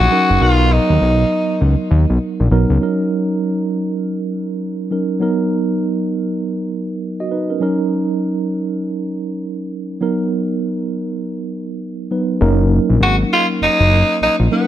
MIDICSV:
0, 0, Header, 1, 4, 480
1, 0, Start_track
1, 0, Key_signature, 6, "major"
1, 0, Tempo, 600000
1, 326, Time_signature, 4, 2, 24, 8
1, 11738, End_track
2, 0, Start_track
2, 0, Title_t, "Tenor saxophone"
2, 0, Program_c, 0, 66
2, 0, Note_on_c, 0, 66, 103
2, 338, Note_on_c, 0, 65, 101
2, 350, Note_off_c, 0, 66, 0
2, 576, Note_on_c, 0, 63, 88
2, 588, Note_off_c, 0, 65, 0
2, 1291, Note_off_c, 0, 63, 0
2, 10422, Note_on_c, 0, 66, 114
2, 10526, Note_off_c, 0, 66, 0
2, 10662, Note_on_c, 0, 65, 102
2, 10767, Note_off_c, 0, 65, 0
2, 10902, Note_on_c, 0, 63, 111
2, 11341, Note_off_c, 0, 63, 0
2, 11381, Note_on_c, 0, 63, 98
2, 11486, Note_off_c, 0, 63, 0
2, 11621, Note_on_c, 0, 59, 89
2, 11738, Note_off_c, 0, 59, 0
2, 11738, End_track
3, 0, Start_track
3, 0, Title_t, "Tine electric piano"
3, 0, Program_c, 1, 4
3, 0, Control_c, 1, 64, 127
3, 0, Note_on_c, 1, 54, 99
3, 0, Note_on_c, 1, 61, 90
3, 0, Note_on_c, 1, 63, 86
3, 0, Note_on_c, 1, 70, 106
3, 88, Note_off_c, 1, 54, 0
3, 88, Note_on_c, 1, 54, 82
3, 92, Note_off_c, 1, 61, 0
3, 92, Note_on_c, 1, 61, 69
3, 95, Note_off_c, 1, 63, 0
3, 95, Note_on_c, 1, 63, 69
3, 98, Note_off_c, 1, 70, 0
3, 98, Note_on_c, 1, 70, 82
3, 269, Note_off_c, 1, 54, 0
3, 271, Note_off_c, 1, 61, 0
3, 272, Note_off_c, 1, 63, 0
3, 274, Note_off_c, 1, 70, 0
3, 328, Note_on_c, 1, 54, 81
3, 331, Note_on_c, 1, 59, 67
3, 335, Control_c, 1, 64, 0
3, 335, Note_on_c, 1, 63, 72
3, 337, Note_on_c, 1, 70, 92
3, 467, Control_c, 1, 64, 127
3, 997, Note_off_c, 1, 54, 0
3, 998, Note_off_c, 1, 59, 0
3, 1000, Note_off_c, 1, 63, 0
3, 1001, Note_off_c, 1, 70, 0
3, 2007, Note_on_c, 1, 54, 94
3, 2011, Note_on_c, 1, 59, 84
3, 2014, Note_on_c, 1, 63, 77
3, 2017, Note_on_c, 1, 70, 100
3, 2189, Note_off_c, 1, 54, 0
3, 2190, Note_off_c, 1, 59, 0
3, 2192, Note_off_c, 1, 63, 0
3, 2194, Note_off_c, 1, 70, 0
3, 2244, Note_on_c, 1, 54, 75
3, 2250, Note_on_c, 1, 61, 68
3, 2256, Control_c, 1, 64, 0
3, 2257, Note_on_c, 1, 63, 68
3, 2264, Note_on_c, 1, 70, 85
3, 2379, Control_c, 1, 64, 127
3, 3892, Note_off_c, 1, 54, 0
3, 3896, Note_off_c, 1, 61, 0
3, 3899, Note_off_c, 1, 63, 0
3, 3903, Note_off_c, 1, 70, 0
3, 3927, Note_on_c, 1, 54, 59
3, 3930, Note_on_c, 1, 61, 52
3, 3934, Note_on_c, 1, 63, 52
3, 3937, Note_on_c, 1, 70, 65
3, 4149, Note_off_c, 1, 54, 0
3, 4158, Note_on_c, 1, 54, 79
3, 4162, Note_off_c, 1, 63, 0
3, 4166, Note_on_c, 1, 59, 70
3, 4168, Note_off_c, 1, 61, 0
3, 4169, Note_off_c, 1, 70, 0
3, 4172, Note_on_c, 1, 63, 70
3, 4174, Control_c, 1, 64, 0
3, 4178, Note_on_c, 1, 70, 82
3, 4322, Control_c, 1, 64, 127
3, 5580, Note_off_c, 1, 63, 0
3, 5583, Note_off_c, 1, 70, 0
3, 5761, Note_on_c, 1, 75, 66
3, 5765, Note_on_c, 1, 66, 57
3, 5844, Note_off_c, 1, 75, 0
3, 5846, Note_off_c, 1, 66, 0
3, 5852, Note_on_c, 1, 71, 66
3, 5856, Note_on_c, 1, 63, 58
3, 5991, Note_off_c, 1, 71, 0
3, 5993, Note_off_c, 1, 63, 0
3, 6002, Note_on_c, 1, 70, 64
3, 6006, Note_on_c, 1, 61, 51
3, 6050, Note_off_c, 1, 54, 0
3, 6054, Note_off_c, 1, 59, 0
3, 6079, Note_off_c, 1, 61, 0
3, 6082, Note_on_c, 1, 54, 81
3, 6089, Note_on_c, 1, 61, 68
3, 6092, Note_off_c, 1, 70, 0
3, 6094, Note_on_c, 1, 63, 70
3, 6095, Control_c, 1, 64, 0
3, 6101, Note_on_c, 1, 70, 82
3, 6216, Control_c, 1, 64, 127
3, 7972, Note_off_c, 1, 54, 0
3, 7975, Note_off_c, 1, 61, 0
3, 7978, Note_off_c, 1, 63, 0
3, 7981, Note_off_c, 1, 70, 0
3, 8003, Note_on_c, 1, 54, 74
3, 8009, Note_on_c, 1, 59, 70
3, 8015, Note_on_c, 1, 63, 70
3, 8016, Control_c, 1, 64, 0
3, 8021, Note_on_c, 1, 70, 85
3, 8152, Control_c, 1, 64, 127
3, 9652, Note_off_c, 1, 54, 0
3, 9655, Note_off_c, 1, 59, 0
3, 9658, Note_off_c, 1, 63, 0
3, 9661, Note_off_c, 1, 70, 0
3, 9684, Note_on_c, 1, 54, 58
3, 9687, Note_on_c, 1, 59, 50
3, 9692, Note_on_c, 1, 63, 53
3, 9694, Note_on_c, 1, 71, 62
3, 9916, Note_off_c, 1, 54, 0
3, 9923, Note_off_c, 1, 63, 0
3, 9926, Note_off_c, 1, 59, 0
3, 9926, Note_on_c, 1, 54, 91
3, 9929, Note_on_c, 1, 58, 93
3, 9930, Note_off_c, 1, 71, 0
3, 9930, Note_on_c, 1, 61, 86
3, 9933, Note_on_c, 1, 63, 88
3, 9935, Note_on_c, 1, 70, 102
3, 9937, Control_c, 1, 64, 0
3, 10083, Control_c, 1, 64, 127
3, 10596, Note_off_c, 1, 54, 0
3, 10597, Note_off_c, 1, 58, 0
3, 10598, Note_off_c, 1, 61, 0
3, 10599, Note_off_c, 1, 63, 0
3, 10600, Note_off_c, 1, 70, 0
3, 11606, Note_on_c, 1, 54, 72
3, 11609, Note_on_c, 1, 58, 71
3, 11611, Note_on_c, 1, 61, 70
3, 11613, Note_on_c, 1, 63, 74
3, 11615, Note_on_c, 1, 70, 85
3, 11738, Note_off_c, 1, 54, 0
3, 11738, Note_off_c, 1, 58, 0
3, 11738, Note_off_c, 1, 61, 0
3, 11738, Note_off_c, 1, 63, 0
3, 11738, Note_off_c, 1, 70, 0
3, 11738, End_track
4, 0, Start_track
4, 0, Title_t, "Analog synth bass"
4, 0, Program_c, 2, 38
4, 237, Note_on_c, 2, 30, 88
4, 307, Note_off_c, 2, 30, 0
4, 327, Note_on_c, 2, 35, 119
4, 632, Note_off_c, 2, 35, 0
4, 716, Note_on_c, 2, 39, 95
4, 787, Note_off_c, 2, 39, 0
4, 808, Note_on_c, 2, 35, 89
4, 995, Note_off_c, 2, 35, 0
4, 1289, Note_on_c, 2, 37, 85
4, 1405, Note_off_c, 2, 37, 0
4, 1527, Note_on_c, 2, 39, 102
4, 1643, Note_off_c, 2, 39, 0
4, 1678, Note_on_c, 2, 35, 100
4, 1747, Note_off_c, 2, 35, 0
4, 1919, Note_on_c, 2, 34, 89
4, 1988, Note_off_c, 2, 34, 0
4, 2007, Note_on_c, 2, 35, 87
4, 2123, Note_off_c, 2, 35, 0
4, 2157, Note_on_c, 2, 37, 89
4, 2227, Note_off_c, 2, 37, 0
4, 9927, Note_on_c, 2, 30, 116
4, 10232, Note_off_c, 2, 30, 0
4, 10316, Note_on_c, 2, 34, 85
4, 10386, Note_off_c, 2, 34, 0
4, 10403, Note_on_c, 2, 32, 94
4, 10592, Note_off_c, 2, 32, 0
4, 10886, Note_on_c, 2, 30, 48
4, 10946, Note_off_c, 2, 30, 0
4, 11036, Note_on_c, 2, 30, 92
4, 11224, Note_off_c, 2, 30, 0
4, 11368, Note_on_c, 2, 34, 50
4, 11427, Note_off_c, 2, 34, 0
4, 11517, Note_on_c, 2, 34, 95
4, 11587, Note_off_c, 2, 34, 0
4, 11738, End_track
0, 0, End_of_file